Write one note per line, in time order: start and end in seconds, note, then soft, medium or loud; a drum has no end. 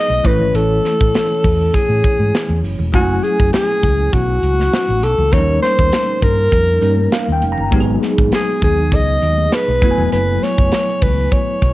0.00 0.20 F#3 medium
0.00 0.20 G#3 medium
0.00 0.20 B3 medium
0.00 0.21 D#4 medium
0.00 0.24 G#4 medium
0.00 0.28 D#5 loud
0.10 0.21 B1 medium
0.10 high conga medium
0.23 0.38 A1 medium
0.23 2.59 E3 medium
0.23 2.59 A3 medium
0.23 2.60 C#4 medium
0.23 2.60 E4 medium
0.23 0.57 B4 loud
0.23 2.60 C#5 medium
0.23 kick loud
0.23 closed hi-hat medium
0.23 high conga soft
0.39 0.51 G#1 medium
0.39 low conga medium
0.53 0.78 A1 loud
0.53 1.76 A4 loud
0.53 closed hi-hat loud
0.53 muted conga soft
0.84 snare soft
0.84 closed hi-hat medium
0.84 muted conga soft
0.84 high conga medium
1.01 1.12 A1 medium
1.01 kick loud
1.14 snare loud
1.14 closed hi-hat loud
1.14 high conga medium
1.44 1.69 E2 medium
1.44 kick medium
1.44 open hi-hat medium
1.44 low conga medium
1.73 2.64 G#4 medium
1.73 kick medium
1.73 closed hi-hat loud
1.73 muted conga soft
1.73 low conga medium
1.89 2.01 A2 medium
2.04 kick loud
2.04 closed hi-hat medium
2.19 2.31 G#2 medium
2.19 high conga medium
2.35 snare loud
2.35 closed hi-hat medium
2.49 2.61 E2 medium
2.49 high conga medium
2.63 2.76 F#1 medium
2.63 open hi-hat medium
2.63 high conga soft
2.79 2.94 E1 medium
2.79 low conga medium
2.92 3.18 F#1 loud
2.92 5.28 F#3 medium
2.92 3.00 G#3 soft
2.92 5.29 C#4 medium
2.92 5.29 E4 medium
2.92 3.25 F#4 medium
2.92 5.29 G#5 medium
2.92 kick loud
2.92 closed hi-hat loud
2.92 muted conga soft
2.99 5.32 A3 medium
3.23 3.52 G#4 medium
3.23 closed hi-hat medium
3.23 high conga medium
3.39 3.51 F#1 medium
3.39 kick loud
3.53 4.15 G#4 medium
3.53 snare loud
3.53 closed hi-hat loud
3.53 muted conga soft
3.53 high conga medium
3.83 4.08 C#2 loud
3.83 kick medium
3.83 closed hi-hat medium
3.83 muted conga soft
3.83 low conga medium
4.13 4.37 B1 medium
4.13 5.05 F#4 loud
4.13 kick medium
4.13 closed hi-hat medium
4.13 muted conga soft
4.13 low conga medium
4.42 4.67 C#2 loud
4.42 closed hi-hat medium
4.42 muted conga soft
4.58 snare soft
4.58 high conga medium
4.72 snare loud
4.72 closed hi-hat medium
4.72 muted conga soft
4.88 5.03 A1 medium
4.88 high conga medium
5.02 5.16 B1 medium
5.02 5.35 A4 loud
5.02 closed hi-hat medium
5.02 high conga soft
5.18 5.30 C#2 medium
5.18 low conga medium
5.32 5.57 D#2 loud
5.32 5.39 F3 medium
5.32 6.79 A#3 medium
5.32 6.80 C#4 medium
5.32 6.80 D#4 medium
5.32 6.80 A#4 medium
5.32 5.62 C#5 loud
5.32 kick loud
5.32 closed hi-hat medium
5.32 muted conga soft
5.39 6.80 G3 medium
5.62 6.25 C5 loud
5.62 snare soft
5.62 closed hi-hat medium
5.62 muted conga soft
5.62 high conga medium
5.79 5.90 D#2 loud
5.79 kick loud
5.92 snare loud
5.92 closed hi-hat loud
5.92 muted conga soft
5.92 high conga medium
6.21 6.47 G2 medium
6.21 7.43 A#4 loud
6.21 kick medium
6.21 closed hi-hat medium
6.21 low conga medium
6.52 6.77 F2 medium
6.52 kick medium
6.52 closed hi-hat medium
6.52 muted conga soft
6.52 low conga medium
6.81 7.07 G2 loud
6.81 7.72 G3 soft
6.81 7.72 A#3 soft
6.81 7.72 C#4 soft
6.81 7.72 D#4 soft
6.81 7.72 A#4 medium
6.81 closed hi-hat medium
6.81 muted conga soft
6.97 high conga medium
7.11 7.31 F5 medium
7.11 snare loud
7.11 closed hi-hat medium
7.11 muted conga soft
7.27 7.40 D#2 medium
7.27 high conga medium
7.32 7.51 G5 medium
7.42 7.55 F1 medium
7.42 closed hi-hat medium
7.42 high conga soft
7.52 7.71 A#5 medium
7.58 7.72 G1 medium
7.58 low conga medium
7.71 7.97 G#1 loud
7.71 9.77 F#3 medium
7.71 9.78 G#3 medium
7.71 9.78 B3 medium
7.71 9.78 D#4 medium
7.71 7.80 G4 medium
7.71 kick loud
7.71 closed hi-hat loud
7.71 muted conga soft
7.80 9.82 G#4 medium
8.02 snare soft
8.02 closed hi-hat medium
8.02 high conga medium
8.18 8.30 G#1 loud
8.18 kick loud
8.32 8.62 G#4 loud
8.32 snare loud
8.32 closed hi-hat loud
8.32 muted conga soft
8.32 high conga medium
8.62 8.94 D#2 loud
8.62 8.96 G#4 medium
8.62 kick medium
8.62 closed hi-hat medium
8.62 low conga medium
8.92 9.17 C#2 loud
8.92 9.55 D#5 loud
8.92 kick medium
8.92 closed hi-hat loud
8.92 low conga medium
9.22 9.47 D#2 loud
9.22 closed hi-hat medium
9.38 high conga medium
9.52 10.12 B4 loud
9.52 snare loud
9.52 closed hi-hat medium
9.52 muted conga soft
9.67 9.80 B1 medium
9.67 high conga medium
9.82 9.95 F#1 medium
9.82 11.73 F#3 medium
9.82 11.73 A3 medium
9.82 11.73 B3 medium
9.82 11.73 E4 medium
9.82 9.90 F#4 medium
9.82 kick loud
9.82 closed hi-hat medium
9.82 high conga soft
9.91 11.73 G#5 medium
9.98 10.09 E1 medium
9.98 low conga medium
10.12 10.37 F#1 loud
10.12 10.45 B4 loud
10.12 closed hi-hat loud
10.12 muted conga soft
10.42 11.04 C#5 loud
10.42 snare soft
10.42 closed hi-hat medium
10.42 muted conga soft
10.42 high conga medium
10.58 10.70 F#1 loud
10.58 kick loud
10.72 snare loud
10.72 closed hi-hat loud
10.72 high conga medium
11.02 11.27 C#2 loud
11.02 11.34 B4 medium
11.02 kick medium
11.02 open hi-hat medium
11.02 low conga medium
11.32 11.73 C#5 medium
11.32 kick medium
11.32 closed hi-hat medium
11.32 low conga medium
11.62 11.73 B1 medium
11.62 kick medium
11.62 closed hi-hat medium
11.62 muted conga soft